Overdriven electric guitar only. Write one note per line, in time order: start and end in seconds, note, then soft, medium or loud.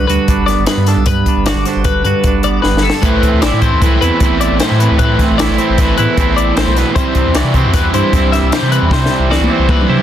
3.02 4.20 A2 loud
3.02 3.41 E3 loud
3.02 3.42 A3 loud
3.02 3.43 C4 loud
3.02 3.44 E4 loud
3.41 3.82 E3 medium
3.41 3.65 A3 medium
3.41 3.63 C4 medium
3.41 3.61 E4 medium
3.62 3.83 A3 medium
3.62 3.84 C4 medium
3.62 3.86 E4 medium
3.83 4.21 E3 medium
3.83 4.04 A3 medium
3.83 4.03 C4 medium
3.83 4.01 E4 medium
4.02 4.22 A3 medium
4.02 4.23 C4 medium
4.02 4.24 E4 medium
4.21 4.60 A2 medium
4.21 4.62 E3 medium
4.21 4.62 A3 medium
4.21 4.63 C4 loud
4.21 4.64 E4 loud
4.61 4.99 A2 loud
4.61 5.01 E3 loud
4.61 5.01 A3 medium
4.61 5.02 C4 loud
4.65 5.03 E4 loud
5.00 5.59 A2 loud
5.00 5.38 E3 loud
5.00 5.39 A3 loud
5.00 5.40 C4 loud
5.00 5.42 E4 loud
5.38 5.78 E3 medium
5.38 5.60 A3 medium
5.38 5.60 C4 medium
5.38 5.58 E4 medium
5.58 5.78 A3 medium
5.58 5.81 C4 medium
5.58 5.81 E4 medium
5.78 6.18 E3 medium
5.78 6.00 A3 medium
5.78 5.99 C4 medium
5.78 5.97 E4 medium
5.97 6.18 A3 medium
5.97 6.20 C4 medium
5.97 6.21 E4 medium
6.17 6.55 A2 medium
6.17 6.57 E3 loud
6.17 6.57 A3 loud
6.17 6.58 C4 medium
6.17 6.59 E4 loud
6.56 6.94 A2 medium
6.56 6.96 E3 loud
6.56 6.95 A3 medium
6.56 6.98 C4 loud
6.56 6.99 E4 loud
6.96 8.13 C3 loud
6.96 7.34 E3 loud
6.96 7.35 G3 loud
6.96 7.37 C4 loud
6.96 7.38 E4 loud
7.35 7.74 E3 medium
7.35 7.58 G3 medium
7.35 7.57 C4 medium
7.35 7.55 E4 medium
7.55 7.75 G3 medium
7.55 7.76 C4 medium
7.55 7.77 E4 medium
7.74 8.14 E3 medium
7.74 7.98 G3 medium
7.74 7.96 C4 medium
7.74 7.94 E4 medium
7.94 8.16 G3 medium
7.94 8.16 C4 medium
7.94 8.17 E4 medium
8.14 8.51 C3 medium
8.14 8.53 E3 loud
8.14 8.53 G3 loud
8.14 8.54 C4 loud
8.14 8.55 E4 loud
8.51 8.89 C3 medium
8.51 8.90 E3 loud
8.51 8.91 G3 medium
8.51 8.92 C4 loud
8.51 8.93 E4 loud
8.91 9.50 C3 loud
8.91 9.28 E3 loud
8.91 9.30 G3 loud
8.91 9.31 C4 loud
8.91 9.32 E4 loud
9.30 9.67 E3 medium
9.30 9.52 G3 medium
9.30 9.50 C4 medium
9.30 9.49 E4 medium
9.50 9.69 G3 medium
9.50 9.70 C4 medium
9.50 9.70 E4 medium
9.68 10.02 E3 medium
9.68 9.90 G3 medium
9.68 9.88 C4 medium
9.68 9.86 E4 medium
9.88 10.02 G3 medium
9.88 10.02 C4 medium
9.88 10.02 E4 medium